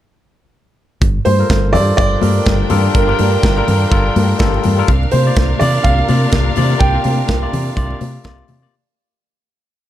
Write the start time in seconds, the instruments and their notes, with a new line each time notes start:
1.01 fingered electric bass G1, kick, closed hi-hat, muted conga
1.25 fingered electric bass G2, grand piano C5, open hi-hat, high conga
1.38 tine electric piano G3 F4 A4 A#4
1.50 fingered electric bass G1, kick, snare, closed hi-hat
1.72 fingered electric bass G2, tine electric piano G3 F4 A4 C5, grand piano D5, open hi-hat, low conga
1.97 fingered electric bass G1, string section D4 A#4 G5, grand piano D5, kick, closed hi-hat, muted conga
2.11 muted conga
2.21 fingered electric bass G2, tine electric piano G3 F4 A4 A#4, open hi-hat, high conga
2.46 fingered electric bass G1, kick, snare, closed hi-hat
2.70 fingered electric bass G2, tine electric piano G3 F4 A4 A#4, open hi-hat, high conga, low conga
2.95 fingered electric bass G1, grand piano A#4, kick, closed hi-hat
3.07 tine electric piano G3 F4 G4 A#4, muted conga
3.19 fingered electric bass G2, open hi-hat, high conga
3.43 fingered electric bass G1, kick, snare, closed hi-hat, muted conga
3.56 tine electric piano G3 F4 A4 A#4, muted conga
3.68 fingered electric bass G2, open hi-hat, low conga
3.91 fingered electric bass G1, tine electric piano G3 F4 A4 A#4, kick, closed hi-hat, muted conga
4.16 fingered electric bass G2, open hi-hat, high conga
4.39 fingered electric bass G1, tine electric piano G3 F4 A4 A#4, kick, snare, closed hi-hat
4.54 muted conga
4.63 fingered electric bass G2, open hi-hat, high conga, low conga
4.78 tine electric piano G3 F4 A4 A#4
4.88 fingered electric bass C2, string section D4 A#4 F5, kick, closed hi-hat
5.03 muted conga
5.11 fingered electric bass C3, grand piano C5, open hi-hat, high conga
5.25 tine electric piano C3 A#3 F4 D5
5.36 fingered electric bass C2, kick, snare, closed hi-hat, muted conga
5.59 tine electric piano C3 A#3 F4 D5, fingered electric bass C3, grand piano D5, open hi-hat, low conga
5.83 fingered electric bass C2, grand piano F5, kick, closed hi-hat, muted conga
5.98 muted conga
6.08 tine electric piano C3 A#3 F4 D5, fingered electric bass C3, open hi-hat, high conga
6.32 fingered electric bass C2, kick, snare, closed hi-hat, muted conga
6.56 tine electric piano C3 A#3 F4 D5, fingered electric bass C3, open hi-hat, high conga, low conga
6.79 fingered electric bass C2, grand piano G5, kick, closed hi-hat, muted conga
6.94 tine electric piano C3 A#3 F4 F5
7.04 fingered electric bass C3, open hi-hat, high conga
7.28 fingered electric bass C2, kick, snare, closed hi-hat, muted conga
7.41 tine electric piano C3 A#3 F4 D5
7.53 fingered electric bass C3, open hi-hat, low conga
7.76 fingered electric bass C2, tine electric piano C3 A#3 F4 D5, kick, closed hi-hat, muted conga
7.90 muted conga
8.01 fingered electric bass C3, open hi-hat, high conga
8.24 fingered electric bass C2, tine electric piano C3 A#3 F4 D5, kick, snare, closed hi-hat, muted conga
8.38 muted conga
8.48 fingered electric bass C3, open hi-hat, high conga, low conga
8.61 tine electric piano C3 A#3 F4 D5